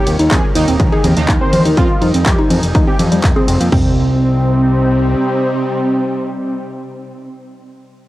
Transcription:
Already playing: C3 D#3 G3 D#4 G4 A#4
0.07 D#2, closed hi-hat, ride
0.19 D#2 D#4, closed hi-hat
0.31 D#2 C4 G#4, kick, clap, closed hi-hat
0.55 D#2 D#3 A#3 D#4, closed hi-hat, ride
0.68 D#1 C4, closed hi-hat
0.80 C#2, kick, closed hi-hat, low conga
0.92 D#4 G#4
1.04 D#2 C4, closed hi-hat, ride, low conga
1.17 D#2 D#3 A#3 D#4, closed hi-hat
1.29 D#2 D#4, kick, clap, closed hi-hat
1.41 C4 C5
1.53 D#2, closed hi-hat, ride, low conga
1.65 D#2 D#4, closed hi-hat
1.77 F2 F3 C4 F4 G#5, kick, closed hi-hat
2.02 F2 D#4, closed hi-hat, ride
2.14 F2 C4, closed hi-hat
2.26 F2 G4, kick, clap, closed hi-hat
2.39 D#4
2.50 F2 C4, closed hi-hat, ride, low conga
2.63 F1, closed hi-hat
2.75 D#2 D#4, kick, closed hi-hat
2.87 C4 G4
2.99 F2, closed hi-hat, ride, low conga
3.12 F2 G3, closed hi-hat
3.24 F1 A#3, kick, clap, closed hi-hat
3.36 C4 G#4
3.48 F1 C4, closed hi-hat, ride
3.61 F2 A#3, closed hi-hat
3.72 C2 C3 G3 C4 D#4 G4, kick, floor tom, crash

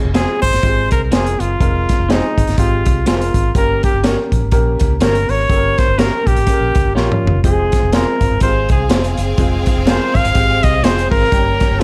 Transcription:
0.05 F1
0.14 G#3 C4 F4 G4 G#4 C5, snare, closed hi-hat
0.21 G#4
0.42 G#1 C5, kick, closed hi-hat
0.53 G1, snare, closed hi-hat
0.63 G#1 G#3 C4 F4 G4, kick, closed hi-hat
0.69 G#4
0.91 C2 A#4, kick, closed hi-hat
1.11 F1 G#3 C4 F4 G#4 A#4 C5, snare, closed hi-hat
1.26 closed hi-hat
1.40 F#1 F4, closed hi-hat
1.60 F1 G#3 C4 F4 A#4, kick, closed hi-hat
1.89 kick, snare, closed hi-hat
2.00 F1
2.09 G#3 C4 D#4 F4 G4 G#4 C5, snare, closed hi-hat
2.15 G#4
2.38 G#1, kick, closed hi-hat
2.47 G1, snare, closed hi-hat
2.58 G#1 G#3 C4 F4 G4, kick, closed hi-hat
2.86 C2, kick, closed hi-hat
3.06 G#3 C4 F4 G#4 C5, snare, closed hi-hat
3.12 A#4
3.21 closed hi-hat
3.34 G#1, kick, closed hi-hat
3.55 G1 A#3 C#4 G4 A#4, kick, closed hi-hat
3.83 G4, kick, closed hi-hat
3.94 G1
4.03 A#3 C#4 G4 A#4 C#5, snare, closed hi-hat
4.32 A#1, kick, closed hi-hat
4.43 G#1
4.51 A#1 A#3 C#4 G4 A#4, kick, closed hi-hat
4.79 C#2, kick, closed hi-hat
5.01 G1 G#3 C#4 G4 A#4 C5 C#5, snare, closed hi-hat
5.07 A#3
5.15 closed hi-hat
5.29 G#1 C#5, open hi-hat
5.50 G1 A#3 C#4 G4 A4, kick, closed hi-hat
5.56 A#4
5.78 C5, kick, snare, closed hi-hat
5.88 G1
5.98 A#3 C#4 G4 A#4 C#5, snare, closed hi-hat
6.27 A#1 G4, kick, closed hi-hat
6.36 G#1, closed hi-hat
6.47 A#3 C#4 G4 G#4, kick, closed hi-hat
6.53 A#4
6.61 A#1
6.75 C#2, kick, closed hi-hat
6.85 G1
6.94 A#1 A#3 C#4 F4 G4 A#4 C#5, snare
7.12 mid tom
7.24 G1, floor tom
7.35 F1
7.44 F1 G#3 C4 F4 G4 G#4 C5, kick, closed hi-hat
7.50 G#4
7.72 kick, snare, closed hi-hat
7.83 F1
7.93 G#3 C4 F4 G#4 A#4 C5, snare, closed hi-hat
8.21 G#1, kick, closed hi-hat
8.31 G1
8.40 G#1 G#3 C4 F4 G4 G#4 C5 F5, kick, closed hi-hat
8.47 G#4
8.69 C2 G#4, kick, closed hi-hat
8.89 F1 G#3 C4 F4 G4 G#4 C5, snare, closed hi-hat
8.96 G#4
9.04 closed hi-hat
9.17 F#1, closed hi-hat
9.38 F1 G#3 C4 F4 G#4, kick, closed hi-hat
9.66 kick, closed hi-hat
9.76 F1
9.86 G#3 C4 F4 G#4 A#4 C5, snare, closed hi-hat
10.15 G#1 F5, kick, closed hi-hat
10.25 G1, closed hi-hat
10.34 G#1 G#3 C4 F4 G4, kick, closed hi-hat
10.63 C2 D#5, kick, closed hi-hat
10.83 F1 G#3 C4 F4 G4 G#4 C5, snare, closed hi-hat
10.89 G#4
10.98 closed hi-hat
11.11 G#1 A#4, kick, open hi-hat
11.31 G1 G3 A#3 C#4 G4 A#4 G5, kick, closed hi-hat
11.60 kick, snare, closed hi-hat
11.71 G1
11.80 G3 F4

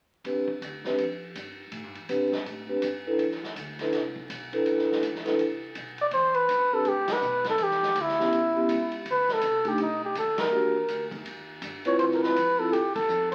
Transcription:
0.24 E2 C4 D4 G4 B4, kick, ride
0.48 muted upright bass stroke, kick
0.61 D2, kick, hi-hat pedal, ride
0.85 C4 D4 G4 B4, snare
0.98 F2, kick, ride
1.35 G2, kick, hi-hat pedal, ride
1.72 A2, kick, ride
1.84 G2
1.95 E2, ride
2.09 B2 C4 D4 G4 B4, kick, hi-hat pedal, ride
2.32 snare
2.45 A2, kick, ride
2.69 C4 D4 G4 B4
2.82 G2, kick, hi-hat pedal, ride
3.07 D4 E4 A4 B4
3.19 E2, kick, ride
3.31 snare
3.43 snare
3.56 D2, kick, hi-hat pedal, ride
3.79 D4 E4 A4 B4, snare, ride
3.92 C2, kick, snare, ride
4.16 kick
4.29 B1, kick, hi-hat pedal, ride
4.53 D4 E4 A4 B4, ride
4.66 A1, kick, ride
4.78 snare
4.92 snare
5.03 E2, kick, hi-hat pedal, ride
5.15 snare
5.25 D4 E4 A4 B4, snare, ride
5.39 C2, kick, ride
5.75 B1, kick, hi-hat pedal, ride
5.98 D5, ride
6.11 E2 C5, kick, ride
6.34 B4, ride
6.48 G2, kick, hi-hat pedal, ride
6.73 C4 D4 G4 A4 B4
6.85 A2 G4, kick, ride
7.08 snare, ride
7.12 B4
7.21 B2, hi-hat pedal
7.44 snare, ride
7.50 A4
7.58 E2, kick, ride
7.63 G4
7.71 snare
7.83 snare
7.95 D2, kick, hi-hat pedal, ride
8.01 E4
8.08 snare
8.20 B3 C#4 E4 G4, snare
8.32 A1, kick, ride
8.56 B3 C#4 E4 G4
8.69 C#2, kick, hi-hat pedal, ride
8.92 ride
9.05 D2, kick, ride
9.11 B4
9.28 snare
9.33 A4
9.41 C2, kick, hi-hat pedal, ride
9.65 A3 D4 D#4 G4, ride
9.78 B1, kick, ride
9.82 D#4
10.05 G4
10.15 D#2 A4, kick, hi-hat pedal, ride
10.38 A#4, snare, ride
10.51 E2 A#3 D4 F#4 G4
10.88 D2, kick, hi-hat pedal, ride
11.11 kick, ride
11.25 D#2, kick, ride
11.62 G2, kick, hi-hat pedal, ride
11.85 C4 E4 F4 B4 C#5, ride
11.99 D2 C5, kick, ride
12.11 A#4, snare
12.22 B4, snare
12.36 F2, kick, hi-hat pedal, ride
12.59 C4 E4 F4 A4
12.72 G2 G4, kick, ride
12.95 A4, kick, ride
13.08 F2, hi-hat pedal
13.32 C5

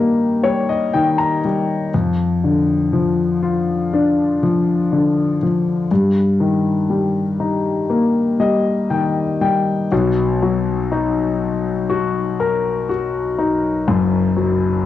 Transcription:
Already playing: G2 D#3 G3 A#3 D#4
0.44 G3 C#5
0.69 D#5
0.93 D#3 G5
1.18 A#5
1.45 G3
1.94 F2
2.44 D3
2.93 F3
3.42 F4
3.93 D4
4.43 F3
4.92 D3
5.43 F3
5.91 G2
6.40 D#3
6.90 G3
7.40 D#4
7.90 A#3
8.40 G3 D#5
8.90 D#3 G5
9.41 G3 G5
9.92 B1 B2
10.42 F#3
10.92 D#4
11.90 F#4
12.40 A#4
12.89 F#4
13.39 D#4
13.88 F#1 F#2
14.37 F#3

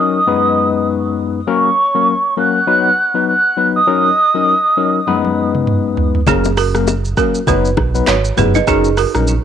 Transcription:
Already playing: F#3 C#4 D#4 A#4
0.00 D#6
0.27 F#2 G#3 B3 D#4 B4
1.47 F#3 A#3 C#4 A#4 C#6
1.94 F#3 A#3 C#4 A#4
2.37 F#3 A#3 C#4 A#4 F#6
2.67 F#3 B3 D#4 B4
3.14 F#3 B3 D#4 B4
3.28 F#6
3.57 F#3 B3 D#4 B4
3.76 D#6
3.87 F#3 C#4 D#4 A#4
4.34 F#3 C#4 D#4 A#4
4.77 F#3 C#4 D#4 A#4
5.07 F#2 G#3 B3 D#4 B4, high tom
5.25 high tom
5.55 mid tom
5.67 mid tom
5.97 floor tom
6.15 floor tom
6.27 F#1 F#3 A#3 C#4 G#4 A#4, kick, cross-stick, low conga, shaker
6.44 high bongo, shaker
6.57 F#4 A#4, cross-stick, open hi-hat, shaker
6.75 F#3 A#3 C#4 A#4, cross-stick, shaker
6.88 high bongo, shaker
7.05 shaker
7.17 F#3 A#3 C#4 F#4 A#4, kick, cross-stick, shaker
7.35 shaker
7.47 F#1 F#3 B3 D#4 F#4 B4, kick, low conga, shaker
7.65 shaker
7.77 B1, kick, cross-stick, low bongo
7.95 F#3 B3 D#4 B4, shaker
8.07 G#1 F#4 C#5, cross-stick, clap, high bongo, shaker
8.25 shaker
8.37 F#1 F#3 B3 D#4 G#4 B4, mid tom, low conga, shaker
8.55 B4 D#5, low bongo, shaker
8.67 F#1 F#3 C#4 D#4 G#4 A#4, kick, cross-stick, shaker
8.84 shaker
8.97 F#4 A#4, cross-stick, open hi-hat, shaker
9.15 A#1 F#3 C#4 D#4 A#4, cross-stick, shaker
9.28 shaker

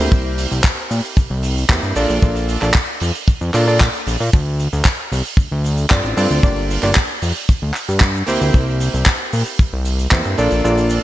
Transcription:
Already playing: A#3 C4 E4 G4 C5
0.12 C2, kick, shaker
0.38 open hi-hat, shaker
0.51 C2, shaker
0.64 kick, clap, shaker
0.91 A#2, open hi-hat, shaker
1.05 shaker
1.17 C2, kick, shaker
1.30 C2
1.43 open hi-hat, shaker
1.58 shaker
1.69 E2 A#3 C4 E4 G4 C5, kick, clap, shaker
1.83 G2, shaker
1.96 A#1 A#3 D4 F4 A4 D5, open hi-hat, shaker
2.09 A#1, shaker
2.22 A#1 A#3 D4 F4 A4 D5, kick, shaker
2.35 open hi-hat, shaker
2.49 open hi-hat, shaker
2.61 A#1 A#3 D4 F4 A4 D5, clap, shaker
2.74 kick, clap, shaker
3.00 F2, open hi-hat, shaker
3.15 shaker
3.28 kick, shaker
3.41 F2, shaker
3.53 A#2 A#3 D4 F4 A4 D5, clap, open hi-hat, shaker
3.67 A#3 D4 F4 A4 D5, shaker
3.80 kick, clap, shaker
3.95 shaker
4.07 A#1, open hi-hat, shaker
4.20 A#2, shaker
4.33 D2, kick, shaker
4.60 open hi-hat, shaker
4.73 D2, shaker
4.85 kick, clap, shaker
5.12 C2, open hi-hat, shaker
5.26 shaker
5.37 D2, kick, shaker
5.52 D2
5.64 open hi-hat, shaker
5.78 shaker
5.90 G2 C4 D4 F4 A4 D5, kick, clap, shaker
6.04 A1, shaker
6.17 G2 C4 D4 F4 A4 D5, open hi-hat, shaker
6.31 D2, shaker
6.43 G1 A#3 D4 F4 G4 D5, kick, shaker
6.56 open hi-hat
6.70 open hi-hat, shaker
6.83 G1 A#3 D4 F4 G4 D5, clap, shaker
6.95 kick, clap, shaker
7.22 F2, open hi-hat, shaker
7.36 shaker
7.49 kick, shaker
7.62 D2
7.74 clap, open hi-hat, shaker
7.89 G2, shaker
8.00 kick, clap, shaker
8.15 shaker
8.27 D2 A#3 C4 E4 G4 C5, open hi-hat, shaker
8.41 D2, shaker
8.54 C2, kick, shaker
8.80 open hi-hat, shaker
8.94 C2, shaker
9.06 kick, clap, shaker
9.33 A#2, open hi-hat, shaker
9.46 shaker
9.59 C2, kick, shaker
9.73 C2
9.85 open hi-hat, shaker
9.99 shaker
10.11 E2 A#3 C4 E4 G4 C5, kick, clap, shaker
10.24 G2, shaker
10.38 A#1 A#3 D4 F4 A4 D5, open hi-hat, shaker
10.51 A#1, shaker
10.64 A#1 A#3 D4 F4 A4 D5, shaker
10.77 open hi-hat, shaker
10.90 open hi-hat, shaker

